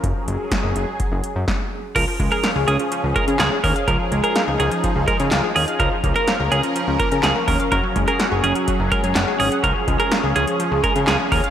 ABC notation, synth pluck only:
X:1
M:4/4
L:1/16
Q:1/4=125
K:Db
V:1 name="Synth pluck"
z16 | F, F, A, A f A D F, F, F, A, A f A D f | F, F, A, A f A D F, F, F, A, A f A D f | F, F, B, B f B D F, F, F, B, B f B D f |
G, G, A, A g A D G, G, G, A, A g A D g | F, F, A, A f A D F, F, F, A, A f A D f |]